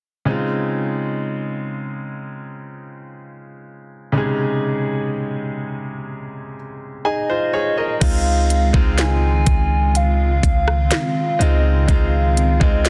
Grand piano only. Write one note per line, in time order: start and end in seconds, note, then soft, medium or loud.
0.25 4.09 C#3 medium
0.25 4.10 G#3 medium
0.25 4.11 C4 medium
0.25 4.11 D#4 medium
0.31 4.12 F4 medium
4.12 7.98 C3 medium
4.12 7.96 C#3 medium
4.12 7.97 G#3 medium
4.16 6.53 D#4 medium
4.16 6.54 G#4 medium
7.05 7.28 D#4 medium
7.05 7.28 G#4 medium
7.05 7.50 G#5 medium
7.30 7.53 F4 medium
7.30 7.52 C5 medium
7.53 7.77 G#4 medium
7.53 7.76 C#5 medium
7.78 8.24 A#4 medium
7.78 8.23 D#5 medium
8.00 8.69 G#3 medium
8.00 8.69 C4 medium
8.00 8.70 D#4 medium
8.00 8.70 F4 medium
8.73 10.54 G#3 medium
8.73 10.55 C4 medium
8.73 10.55 D#4 medium
8.73 10.56 F4 medium
11.39 11.85 G#3 medium
11.39 11.85 C4 medium
11.39 11.86 D#4 medium
11.39 11.86 F4 medium
11.88 12.56 G#3 medium
11.88 12.56 C4 medium
11.88 12.57 D#4 medium
11.88 12.57 F4 medium
12.60 12.89 G#3 medium
12.60 12.89 C4 medium
12.60 12.89 D#4 medium
12.60 12.89 F4 medium